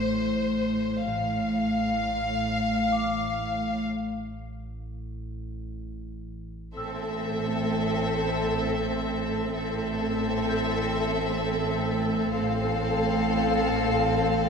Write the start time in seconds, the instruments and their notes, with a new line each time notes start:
Already playing: synth drone A1, cello section A2, violin section C5, celesta D6
1.03 double bass section A1, synth drone A1, cello section A2, violin section F5
2.92 celesta D6
3.87 synth drone A1
6.76 double bass section A1, synth drone A1, cello section A2, viola section C4, violin section A4 E5, celesta E6
9.55 double bass section A1, synth drone A1, cello section A2, viola section C4, violin section A4 E5
10.49 celesta G6
12.34 double bass section A1, synth drone A1, cello section A2, viola section C4, violin section A4 F5